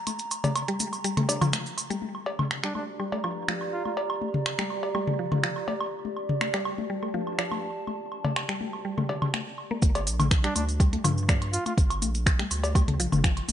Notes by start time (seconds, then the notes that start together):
Already playing: A#5
0.07 closed hi-hat, high tom, cabasa, high woodblock
0.19 closed hi-hat, cabasa
0.31 open hi-hat, cabasa, high woodblock
0.44 closed hi-hat, mid tom, high tom, cowbell, cabasa
0.56 closed hi-hat, cabasa, high woodblock
0.68 G3, closed hi-hat
0.80 open hi-hat, high tom, cabasa
0.93 open hi-hat, cabasa, high woodblock
1.04 G3, closed hi-hat, cabasa
1.17 A3, closed hi-hat, mid tom, high tom, high woodblock
1.29 D4, open hi-hat, cowbell, cabasa
1.41 F3, closed hi-hat, mid tom, cabasa, high woodblock
1.53 finger snap, closed hi-hat, high tom, cabasa
1.66 open hi-hat
1.78 open hi-hat, cabasa, high woodblock
1.90 G3, closed hi-hat, high tom, cabasa
2.02 G1 G4, high tom
2.12 D5, high woodblock
2.26 A#1 A#5, cowbell
2.39 mid tom, high tom, high woodblock
2.51 finger snap
2.64 G3 D4, finger snap
2.75 D2 D4, high tom, high woodblock
3.00 G3, high woodblock
3.12 A3, high tom, cowbell
3.24 G2 F3, high woodblock
3.48 F3, finger snap, high tom
3.61 high woodblock
3.73 F4
3.85 F4, high tom, high woodblock
3.97 G1, cowbell
4.10 high woodblock
4.21 A#1, high tom
4.34 mid tom
4.46 finger snap, high woodblock
4.59 G3, finger snap, high tom
4.70 D2, high woodblock
4.83 cowbell
4.95 G3, high tom, high woodblock
5.07 A3, mid tom
5.19 A#1 F3
5.32 G1, mid tom, high tom, high woodblock
5.43 F3, finger snap
5.56 high woodblock
5.68 G1, high tom, cowbell
5.81 high woodblock
5.92 G1
6.05 high tom
6.17 A#1, high woodblock
6.29 mid tom
6.38 A5, finger snap, high tom, high woodblock
6.54 G3, finger snap, cowbell
6.65 D2, high woodblock
6.78 high tom
6.90 G3
7.03 A3, high woodblock
7.14 G2 F3, high tom
7.27 high woodblock
7.38 F3, finger snap, cowbell
7.52 high tom, high woodblock
7.87 G1, high tom, high woodblock
8.12 A#1, high woodblock
8.25 mid tom, high tom, cowbell
8.36 finger snap, high woodblock
8.49 G3, finger snap
8.61 D2, high tom
8.73 high woodblock
8.85 G3
8.98 A3, mid tom, high tom, high woodblock
9.09 D2 D3, cowbell
9.22 mid tom, high woodblock
9.34 finger snap, high tom
9.46 G1
9.58 high woodblock
9.71 A#3, high tom
9.82 G1, kick, closed hi-hat, high tom, cabasa
9.95 closed hi-hat, cowbell, cabasa, high woodblock
10.07 A#1, open hi-hat, cabasa
10.20 closed hi-hat, mid tom, high tom, cabasa, high woodblock
10.31 finger snap, kick, closed hi-hat, cabasa
10.44 G3 D4, finger snap, closed hi-hat
10.56 D2 D4, open hi-hat, high tom, cabasa, high woodblock
10.69 open hi-hat, cabasa
10.80 G3, kick, closed hi-hat, cabasa, high woodblock
10.93 A3, closed hi-hat, high tom
11.04 G2 F3, open hi-hat, mid tom, cabasa, high woodblock
11.18 cabasa
11.29 F3, finger snap, kick, closed hi-hat, high tom, cowbell, cabasa
11.42 closed hi-hat, high woodblock
11.53 F4, open hi-hat, cabasa
11.66 F4, closed hi-hat, high tom, cabasa, high woodblock
11.78 G1, kick, closed hi-hat, cabasa
11.90 closed hi-hat, cabasa, high woodblock
12.02 A#1, open hi-hat, high tom, cabasa
12.15 closed hi-hat, cabasa
12.26 finger snap, kick, closed hi-hat, cabasa, high woodblock
12.39 G3, finger snap, closed hi-hat, high tom
12.51 D2, open hi-hat, cabasa, high woodblock
12.63 open hi-hat, cowbell, cabasa
12.75 G3, kick, closed hi-hat, high tom, cabasa, high woodblock
12.88 A3, closed hi-hat, mid tom
13.00 A#1 F3, open hi-hat, cabasa
13.12 G1, mid tom, high tom, cabasa, high woodblock
13.24 F3, finger snap, kick, closed hi-hat, cabasa
13.37 closed hi-hat, high woodblock
13.48 G1, open hi-hat, high tom, cabasa